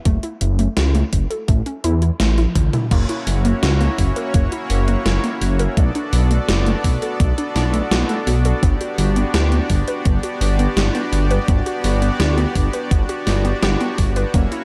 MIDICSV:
0, 0, Header, 1, 5, 480
1, 0, Start_track
1, 0, Tempo, 714286
1, 37, Time_signature, 4, 2, 24, 8
1, 9838, End_track
2, 0, Start_track
2, 0, Title_t, "Supersaw synth"
2, 0, Program_c, 0, 81
2, 1954, Note_on_c, 0, 61, 81
2, 1954, Note_on_c, 0, 64, 76
2, 1954, Note_on_c, 0, 66, 81
2, 1954, Note_on_c, 0, 73, 91
2, 1956, Note_on_c, 0, 58, 85
2, 3856, Note_off_c, 0, 61, 0
2, 3856, Note_off_c, 0, 64, 0
2, 3856, Note_off_c, 0, 66, 0
2, 3856, Note_off_c, 0, 73, 0
2, 3857, Note_off_c, 0, 58, 0
2, 3878, Note_on_c, 0, 59, 85
2, 3878, Note_on_c, 0, 62, 79
2, 3878, Note_on_c, 0, 69, 78
2, 3878, Note_on_c, 0, 74, 94
2, 3879, Note_on_c, 0, 66, 78
2, 5778, Note_off_c, 0, 59, 0
2, 5778, Note_off_c, 0, 74, 0
2, 5779, Note_off_c, 0, 69, 0
2, 5798, Note_on_c, 0, 59, 90
2, 5798, Note_on_c, 0, 67, 79
2, 5799, Note_on_c, 0, 74, 98
2, 9611, Note_off_c, 0, 59, 0
2, 9611, Note_off_c, 0, 62, 0
2, 9611, Note_off_c, 0, 67, 0
2, 9611, Note_off_c, 0, 74, 0
2, 9635, Note_on_c, 0, 61, 80
2, 9636, Note_on_c, 0, 64, 79
2, 9637, Note_on_c, 0, 58, 83
2, 9637, Note_on_c, 0, 73, 90
2, 9838, Note_off_c, 0, 58, 0
2, 9838, Note_off_c, 0, 61, 0
2, 9838, Note_off_c, 0, 64, 0
2, 9838, Note_off_c, 0, 66, 0
2, 9838, Note_off_c, 0, 73, 0
2, 9838, End_track
3, 0, Start_track
3, 0, Title_t, "Synth arpeggio sound"
3, 0, Program_c, 1, 84
3, 38, Note_on_c, 1, 57, 100
3, 145, Note_off_c, 1, 57, 0
3, 157, Note_on_c, 1, 64, 77
3, 265, Note_off_c, 1, 64, 0
3, 397, Note_on_c, 1, 57, 77
3, 462, Note_off_c, 1, 57, 0
3, 518, Note_on_c, 1, 66, 85
3, 582, Note_off_c, 1, 66, 0
3, 638, Note_on_c, 1, 57, 77
3, 745, Note_off_c, 1, 57, 0
3, 877, Note_on_c, 1, 69, 79
3, 991, Note_off_c, 1, 69, 0
3, 996, Note_on_c, 1, 57, 102
3, 1104, Note_off_c, 1, 57, 0
3, 1117, Note_on_c, 1, 61, 79
3, 1225, Note_off_c, 1, 61, 0
3, 1238, Note_on_c, 1, 64, 108
3, 1302, Note_off_c, 1, 64, 0
3, 1359, Note_on_c, 1, 64, 78
3, 1466, Note_off_c, 1, 64, 0
3, 1479, Note_on_c, 1, 57, 82
3, 1592, Note_off_c, 1, 57, 0
3, 1600, Note_on_c, 1, 64, 79
3, 1706, Note_off_c, 1, 64, 0
3, 1839, Note_on_c, 1, 64, 79
3, 1952, Note_off_c, 1, 64, 0
3, 1958, Note_on_c, 1, 58, 106
3, 2066, Note_off_c, 1, 58, 0
3, 2078, Note_on_c, 1, 64, 77
3, 2186, Note_off_c, 1, 64, 0
3, 2319, Note_on_c, 1, 58, 83
3, 2383, Note_off_c, 1, 58, 0
3, 2437, Note_on_c, 1, 66, 83
3, 2502, Note_off_c, 1, 66, 0
3, 2557, Note_on_c, 1, 58, 79
3, 2665, Note_off_c, 1, 58, 0
3, 2797, Note_on_c, 1, 70, 79
3, 2911, Note_off_c, 1, 70, 0
3, 2919, Note_on_c, 1, 58, 108
3, 3026, Note_off_c, 1, 58, 0
3, 3040, Note_on_c, 1, 64, 80
3, 3146, Note_off_c, 1, 64, 0
3, 3281, Note_on_c, 1, 58, 80
3, 3344, Note_off_c, 1, 58, 0
3, 3400, Note_on_c, 1, 66, 84
3, 3463, Note_off_c, 1, 66, 0
3, 3520, Note_on_c, 1, 58, 78
3, 3626, Note_off_c, 1, 58, 0
3, 3760, Note_on_c, 1, 70, 80
3, 3873, Note_off_c, 1, 70, 0
3, 3879, Note_on_c, 1, 57, 100
3, 3986, Note_off_c, 1, 57, 0
3, 4001, Note_on_c, 1, 62, 78
3, 4107, Note_off_c, 1, 62, 0
3, 4239, Note_on_c, 1, 57, 75
3, 4303, Note_off_c, 1, 57, 0
3, 4360, Note_on_c, 1, 66, 81
3, 4423, Note_off_c, 1, 66, 0
3, 4480, Note_on_c, 1, 57, 74
3, 4586, Note_off_c, 1, 57, 0
3, 4720, Note_on_c, 1, 69, 79
3, 4832, Note_off_c, 1, 69, 0
3, 4839, Note_on_c, 1, 57, 101
3, 4946, Note_off_c, 1, 57, 0
3, 4960, Note_on_c, 1, 62, 80
3, 5066, Note_off_c, 1, 62, 0
3, 5200, Note_on_c, 1, 57, 77
3, 5263, Note_off_c, 1, 57, 0
3, 5320, Note_on_c, 1, 66, 83
3, 5383, Note_off_c, 1, 66, 0
3, 5441, Note_on_c, 1, 57, 80
3, 5547, Note_off_c, 1, 57, 0
3, 5681, Note_on_c, 1, 69, 83
3, 5793, Note_off_c, 1, 69, 0
3, 5800, Note_on_c, 1, 59, 108
3, 5907, Note_off_c, 1, 59, 0
3, 5920, Note_on_c, 1, 66, 76
3, 6026, Note_off_c, 1, 66, 0
3, 6158, Note_on_c, 1, 59, 79
3, 6222, Note_off_c, 1, 59, 0
3, 6279, Note_on_c, 1, 67, 89
3, 6343, Note_off_c, 1, 67, 0
3, 6399, Note_on_c, 1, 59, 78
3, 6506, Note_off_c, 1, 59, 0
3, 6639, Note_on_c, 1, 71, 84
3, 6752, Note_off_c, 1, 71, 0
3, 6758, Note_on_c, 1, 59, 103
3, 6865, Note_off_c, 1, 59, 0
3, 6877, Note_on_c, 1, 66, 83
3, 6985, Note_off_c, 1, 66, 0
3, 7118, Note_on_c, 1, 59, 84
3, 7182, Note_off_c, 1, 59, 0
3, 7238, Note_on_c, 1, 67, 84
3, 7302, Note_off_c, 1, 67, 0
3, 7359, Note_on_c, 1, 59, 77
3, 7466, Note_off_c, 1, 59, 0
3, 7598, Note_on_c, 1, 71, 82
3, 7712, Note_off_c, 1, 71, 0
3, 7719, Note_on_c, 1, 59, 103
3, 7826, Note_off_c, 1, 59, 0
3, 7838, Note_on_c, 1, 66, 75
3, 7945, Note_off_c, 1, 66, 0
3, 8078, Note_on_c, 1, 59, 80
3, 8142, Note_off_c, 1, 59, 0
3, 8198, Note_on_c, 1, 67, 87
3, 8262, Note_off_c, 1, 67, 0
3, 8317, Note_on_c, 1, 59, 77
3, 8425, Note_off_c, 1, 59, 0
3, 8558, Note_on_c, 1, 71, 80
3, 8672, Note_off_c, 1, 71, 0
3, 8677, Note_on_c, 1, 59, 103
3, 8785, Note_off_c, 1, 59, 0
3, 8798, Note_on_c, 1, 66, 82
3, 8905, Note_off_c, 1, 66, 0
3, 9037, Note_on_c, 1, 59, 80
3, 9102, Note_off_c, 1, 59, 0
3, 9159, Note_on_c, 1, 67, 86
3, 9223, Note_off_c, 1, 67, 0
3, 9279, Note_on_c, 1, 59, 75
3, 9386, Note_off_c, 1, 59, 0
3, 9518, Note_on_c, 1, 71, 77
3, 9632, Note_off_c, 1, 71, 0
3, 9639, Note_on_c, 1, 58, 101
3, 9746, Note_off_c, 1, 58, 0
3, 9757, Note_on_c, 1, 64, 77
3, 9838, Note_off_c, 1, 64, 0
3, 9838, End_track
4, 0, Start_track
4, 0, Title_t, "Detuned saw bass"
4, 0, Program_c, 2, 39
4, 37, Note_on_c, 2, 30, 101
4, 125, Note_off_c, 2, 30, 0
4, 278, Note_on_c, 2, 30, 92
4, 453, Note_off_c, 2, 30, 0
4, 517, Note_on_c, 2, 37, 98
4, 693, Note_off_c, 2, 37, 0
4, 757, Note_on_c, 2, 30, 89
4, 845, Note_off_c, 2, 30, 0
4, 997, Note_on_c, 2, 33, 97
4, 1085, Note_off_c, 2, 33, 0
4, 1238, Note_on_c, 2, 40, 91
4, 1414, Note_off_c, 2, 40, 0
4, 1477, Note_on_c, 2, 33, 101
4, 1653, Note_off_c, 2, 33, 0
4, 1717, Note_on_c, 2, 33, 99
4, 1805, Note_off_c, 2, 33, 0
4, 1957, Note_on_c, 2, 30, 97
4, 2045, Note_off_c, 2, 30, 0
4, 2197, Note_on_c, 2, 30, 95
4, 2373, Note_off_c, 2, 30, 0
4, 2437, Note_on_c, 2, 37, 102
4, 2613, Note_off_c, 2, 37, 0
4, 2678, Note_on_c, 2, 30, 91
4, 2765, Note_off_c, 2, 30, 0
4, 2918, Note_on_c, 2, 30, 92
4, 3006, Note_off_c, 2, 30, 0
4, 3158, Note_on_c, 2, 30, 82
4, 3333, Note_off_c, 2, 30, 0
4, 3397, Note_on_c, 2, 30, 91
4, 3485, Note_off_c, 2, 30, 0
4, 3638, Note_on_c, 2, 30, 89
4, 3814, Note_off_c, 2, 30, 0
4, 3878, Note_on_c, 2, 35, 106
4, 3966, Note_off_c, 2, 35, 0
4, 4117, Note_on_c, 2, 35, 96
4, 4293, Note_off_c, 2, 35, 0
4, 4357, Note_on_c, 2, 30, 99
4, 4533, Note_off_c, 2, 30, 0
4, 4599, Note_on_c, 2, 35, 88
4, 4686, Note_off_c, 2, 35, 0
4, 4838, Note_on_c, 2, 35, 97
4, 4926, Note_off_c, 2, 35, 0
4, 5077, Note_on_c, 2, 35, 79
4, 5253, Note_off_c, 2, 35, 0
4, 5317, Note_on_c, 2, 35, 89
4, 5405, Note_off_c, 2, 35, 0
4, 5557, Note_on_c, 2, 35, 83
4, 5733, Note_off_c, 2, 35, 0
4, 5798, Note_on_c, 2, 31, 107
4, 5886, Note_off_c, 2, 31, 0
4, 6036, Note_on_c, 2, 31, 95
4, 6213, Note_off_c, 2, 31, 0
4, 6276, Note_on_c, 2, 38, 98
4, 6453, Note_off_c, 2, 38, 0
4, 6517, Note_on_c, 2, 31, 88
4, 6605, Note_off_c, 2, 31, 0
4, 6757, Note_on_c, 2, 31, 91
4, 6845, Note_off_c, 2, 31, 0
4, 6994, Note_on_c, 2, 31, 82
4, 7172, Note_off_c, 2, 31, 0
4, 7234, Note_on_c, 2, 31, 89
4, 7324, Note_off_c, 2, 31, 0
4, 7474, Note_on_c, 2, 31, 88
4, 7652, Note_off_c, 2, 31, 0
4, 7718, Note_on_c, 2, 31, 103
4, 7805, Note_off_c, 2, 31, 0
4, 7956, Note_on_c, 2, 31, 97
4, 8133, Note_off_c, 2, 31, 0
4, 8196, Note_on_c, 2, 38, 96
4, 8373, Note_off_c, 2, 38, 0
4, 8437, Note_on_c, 2, 31, 89
4, 8525, Note_off_c, 2, 31, 0
4, 8676, Note_on_c, 2, 31, 95
4, 8765, Note_off_c, 2, 31, 0
4, 8916, Note_on_c, 2, 31, 80
4, 9093, Note_off_c, 2, 31, 0
4, 9156, Note_on_c, 2, 31, 87
4, 9245, Note_off_c, 2, 31, 0
4, 9397, Note_on_c, 2, 31, 82
4, 9573, Note_off_c, 2, 31, 0
4, 9636, Note_on_c, 2, 30, 99
4, 9725, Note_off_c, 2, 30, 0
4, 9838, End_track
5, 0, Start_track
5, 0, Title_t, "Drums"
5, 36, Note_on_c, 9, 42, 67
5, 37, Note_on_c, 9, 36, 116
5, 103, Note_off_c, 9, 42, 0
5, 105, Note_off_c, 9, 36, 0
5, 155, Note_on_c, 9, 42, 42
5, 223, Note_off_c, 9, 42, 0
5, 275, Note_on_c, 9, 42, 89
5, 343, Note_off_c, 9, 42, 0
5, 396, Note_on_c, 9, 42, 39
5, 463, Note_off_c, 9, 42, 0
5, 515, Note_on_c, 9, 38, 114
5, 515, Note_on_c, 9, 42, 68
5, 583, Note_off_c, 9, 38, 0
5, 583, Note_off_c, 9, 42, 0
5, 636, Note_on_c, 9, 42, 37
5, 703, Note_off_c, 9, 42, 0
5, 757, Note_on_c, 9, 36, 58
5, 757, Note_on_c, 9, 42, 87
5, 824, Note_off_c, 9, 36, 0
5, 824, Note_off_c, 9, 42, 0
5, 877, Note_on_c, 9, 42, 37
5, 944, Note_off_c, 9, 42, 0
5, 997, Note_on_c, 9, 36, 115
5, 997, Note_on_c, 9, 42, 69
5, 1064, Note_off_c, 9, 36, 0
5, 1064, Note_off_c, 9, 42, 0
5, 1116, Note_on_c, 9, 42, 38
5, 1183, Note_off_c, 9, 42, 0
5, 1237, Note_on_c, 9, 42, 89
5, 1304, Note_off_c, 9, 42, 0
5, 1357, Note_on_c, 9, 42, 41
5, 1424, Note_off_c, 9, 42, 0
5, 1477, Note_on_c, 9, 38, 115
5, 1477, Note_on_c, 9, 42, 67
5, 1544, Note_off_c, 9, 38, 0
5, 1544, Note_off_c, 9, 42, 0
5, 1597, Note_on_c, 9, 38, 34
5, 1597, Note_on_c, 9, 42, 38
5, 1597, Note_on_c, 9, 48, 51
5, 1665, Note_off_c, 9, 38, 0
5, 1665, Note_off_c, 9, 42, 0
5, 1665, Note_off_c, 9, 48, 0
5, 1717, Note_on_c, 9, 36, 62
5, 1717, Note_on_c, 9, 42, 86
5, 1717, Note_on_c, 9, 47, 73
5, 1784, Note_off_c, 9, 36, 0
5, 1784, Note_off_c, 9, 42, 0
5, 1784, Note_off_c, 9, 47, 0
5, 1837, Note_on_c, 9, 42, 40
5, 1837, Note_on_c, 9, 45, 81
5, 1904, Note_off_c, 9, 42, 0
5, 1904, Note_off_c, 9, 45, 0
5, 1957, Note_on_c, 9, 36, 118
5, 1957, Note_on_c, 9, 42, 67
5, 1957, Note_on_c, 9, 49, 109
5, 2024, Note_off_c, 9, 36, 0
5, 2024, Note_off_c, 9, 42, 0
5, 2024, Note_off_c, 9, 49, 0
5, 2077, Note_on_c, 9, 42, 43
5, 2144, Note_off_c, 9, 42, 0
5, 2197, Note_on_c, 9, 46, 79
5, 2264, Note_off_c, 9, 46, 0
5, 2317, Note_on_c, 9, 42, 42
5, 2385, Note_off_c, 9, 42, 0
5, 2438, Note_on_c, 9, 38, 123
5, 2438, Note_on_c, 9, 42, 72
5, 2505, Note_off_c, 9, 38, 0
5, 2505, Note_off_c, 9, 42, 0
5, 2558, Note_on_c, 9, 42, 40
5, 2625, Note_off_c, 9, 42, 0
5, 2677, Note_on_c, 9, 46, 81
5, 2678, Note_on_c, 9, 36, 62
5, 2745, Note_off_c, 9, 36, 0
5, 2745, Note_off_c, 9, 46, 0
5, 2797, Note_on_c, 9, 42, 42
5, 2864, Note_off_c, 9, 42, 0
5, 2917, Note_on_c, 9, 42, 70
5, 2918, Note_on_c, 9, 36, 122
5, 2984, Note_off_c, 9, 42, 0
5, 2985, Note_off_c, 9, 36, 0
5, 3037, Note_on_c, 9, 42, 43
5, 3105, Note_off_c, 9, 42, 0
5, 3158, Note_on_c, 9, 46, 78
5, 3225, Note_off_c, 9, 46, 0
5, 3278, Note_on_c, 9, 42, 42
5, 3345, Note_off_c, 9, 42, 0
5, 3398, Note_on_c, 9, 38, 117
5, 3398, Note_on_c, 9, 42, 70
5, 3466, Note_off_c, 9, 38, 0
5, 3466, Note_off_c, 9, 42, 0
5, 3520, Note_on_c, 9, 42, 41
5, 3587, Note_off_c, 9, 42, 0
5, 3639, Note_on_c, 9, 46, 73
5, 3706, Note_off_c, 9, 46, 0
5, 3759, Note_on_c, 9, 42, 43
5, 3826, Note_off_c, 9, 42, 0
5, 3879, Note_on_c, 9, 36, 127
5, 3879, Note_on_c, 9, 42, 71
5, 3946, Note_off_c, 9, 36, 0
5, 3946, Note_off_c, 9, 42, 0
5, 3999, Note_on_c, 9, 42, 41
5, 4066, Note_off_c, 9, 42, 0
5, 4118, Note_on_c, 9, 46, 76
5, 4185, Note_off_c, 9, 46, 0
5, 4239, Note_on_c, 9, 42, 43
5, 4306, Note_off_c, 9, 42, 0
5, 4358, Note_on_c, 9, 38, 127
5, 4358, Note_on_c, 9, 42, 71
5, 4426, Note_off_c, 9, 38, 0
5, 4426, Note_off_c, 9, 42, 0
5, 4479, Note_on_c, 9, 42, 41
5, 4546, Note_off_c, 9, 42, 0
5, 4598, Note_on_c, 9, 36, 66
5, 4599, Note_on_c, 9, 46, 78
5, 4666, Note_off_c, 9, 36, 0
5, 4666, Note_off_c, 9, 46, 0
5, 4718, Note_on_c, 9, 42, 39
5, 4786, Note_off_c, 9, 42, 0
5, 4838, Note_on_c, 9, 42, 73
5, 4839, Note_on_c, 9, 36, 127
5, 4906, Note_off_c, 9, 36, 0
5, 4906, Note_off_c, 9, 42, 0
5, 4959, Note_on_c, 9, 42, 45
5, 5026, Note_off_c, 9, 42, 0
5, 5079, Note_on_c, 9, 38, 61
5, 5079, Note_on_c, 9, 46, 74
5, 5146, Note_off_c, 9, 38, 0
5, 5146, Note_off_c, 9, 46, 0
5, 5199, Note_on_c, 9, 42, 43
5, 5266, Note_off_c, 9, 42, 0
5, 5319, Note_on_c, 9, 38, 127
5, 5319, Note_on_c, 9, 42, 74
5, 5386, Note_off_c, 9, 38, 0
5, 5386, Note_off_c, 9, 42, 0
5, 5438, Note_on_c, 9, 42, 43
5, 5505, Note_off_c, 9, 42, 0
5, 5558, Note_on_c, 9, 46, 72
5, 5625, Note_off_c, 9, 46, 0
5, 5678, Note_on_c, 9, 42, 44
5, 5745, Note_off_c, 9, 42, 0
5, 5798, Note_on_c, 9, 36, 127
5, 5798, Note_on_c, 9, 42, 70
5, 5865, Note_off_c, 9, 36, 0
5, 5865, Note_off_c, 9, 42, 0
5, 5918, Note_on_c, 9, 42, 42
5, 5986, Note_off_c, 9, 42, 0
5, 6037, Note_on_c, 9, 46, 78
5, 6104, Note_off_c, 9, 46, 0
5, 6157, Note_on_c, 9, 42, 42
5, 6224, Note_off_c, 9, 42, 0
5, 6277, Note_on_c, 9, 38, 127
5, 6277, Note_on_c, 9, 42, 71
5, 6344, Note_off_c, 9, 38, 0
5, 6344, Note_off_c, 9, 42, 0
5, 6396, Note_on_c, 9, 42, 40
5, 6464, Note_off_c, 9, 42, 0
5, 6516, Note_on_c, 9, 46, 72
5, 6518, Note_on_c, 9, 36, 68
5, 6583, Note_off_c, 9, 46, 0
5, 6585, Note_off_c, 9, 36, 0
5, 6637, Note_on_c, 9, 42, 41
5, 6704, Note_off_c, 9, 42, 0
5, 6756, Note_on_c, 9, 42, 66
5, 6757, Note_on_c, 9, 36, 127
5, 6824, Note_off_c, 9, 42, 0
5, 6825, Note_off_c, 9, 36, 0
5, 6877, Note_on_c, 9, 42, 43
5, 6944, Note_off_c, 9, 42, 0
5, 6997, Note_on_c, 9, 46, 76
5, 7064, Note_off_c, 9, 46, 0
5, 7118, Note_on_c, 9, 42, 40
5, 7185, Note_off_c, 9, 42, 0
5, 7237, Note_on_c, 9, 38, 126
5, 7237, Note_on_c, 9, 42, 69
5, 7304, Note_off_c, 9, 38, 0
5, 7304, Note_off_c, 9, 42, 0
5, 7357, Note_on_c, 9, 42, 41
5, 7424, Note_off_c, 9, 42, 0
5, 7477, Note_on_c, 9, 46, 73
5, 7544, Note_off_c, 9, 46, 0
5, 7598, Note_on_c, 9, 42, 42
5, 7665, Note_off_c, 9, 42, 0
5, 7717, Note_on_c, 9, 36, 126
5, 7717, Note_on_c, 9, 42, 65
5, 7784, Note_off_c, 9, 36, 0
5, 7784, Note_off_c, 9, 42, 0
5, 7837, Note_on_c, 9, 42, 40
5, 7904, Note_off_c, 9, 42, 0
5, 7957, Note_on_c, 9, 46, 77
5, 8024, Note_off_c, 9, 46, 0
5, 8077, Note_on_c, 9, 42, 39
5, 8145, Note_off_c, 9, 42, 0
5, 8197, Note_on_c, 9, 38, 127
5, 8197, Note_on_c, 9, 42, 66
5, 8264, Note_off_c, 9, 38, 0
5, 8264, Note_off_c, 9, 42, 0
5, 8317, Note_on_c, 9, 42, 39
5, 8384, Note_off_c, 9, 42, 0
5, 8437, Note_on_c, 9, 36, 65
5, 8437, Note_on_c, 9, 46, 77
5, 8504, Note_off_c, 9, 36, 0
5, 8504, Note_off_c, 9, 46, 0
5, 8557, Note_on_c, 9, 42, 38
5, 8624, Note_off_c, 9, 42, 0
5, 8677, Note_on_c, 9, 36, 127
5, 8677, Note_on_c, 9, 42, 65
5, 8744, Note_off_c, 9, 36, 0
5, 8744, Note_off_c, 9, 42, 0
5, 8797, Note_on_c, 9, 42, 42
5, 8864, Note_off_c, 9, 42, 0
5, 8916, Note_on_c, 9, 38, 64
5, 8916, Note_on_c, 9, 46, 73
5, 8983, Note_off_c, 9, 38, 0
5, 8983, Note_off_c, 9, 46, 0
5, 9037, Note_on_c, 9, 42, 38
5, 9104, Note_off_c, 9, 42, 0
5, 9156, Note_on_c, 9, 38, 127
5, 9156, Note_on_c, 9, 42, 66
5, 9224, Note_off_c, 9, 38, 0
5, 9224, Note_off_c, 9, 42, 0
5, 9277, Note_on_c, 9, 42, 38
5, 9344, Note_off_c, 9, 42, 0
5, 9396, Note_on_c, 9, 46, 77
5, 9397, Note_on_c, 9, 36, 68
5, 9463, Note_off_c, 9, 46, 0
5, 9464, Note_off_c, 9, 36, 0
5, 9516, Note_on_c, 9, 42, 40
5, 9583, Note_off_c, 9, 42, 0
5, 9636, Note_on_c, 9, 42, 64
5, 9637, Note_on_c, 9, 36, 118
5, 9703, Note_off_c, 9, 42, 0
5, 9704, Note_off_c, 9, 36, 0
5, 9756, Note_on_c, 9, 42, 38
5, 9823, Note_off_c, 9, 42, 0
5, 9838, End_track
0, 0, End_of_file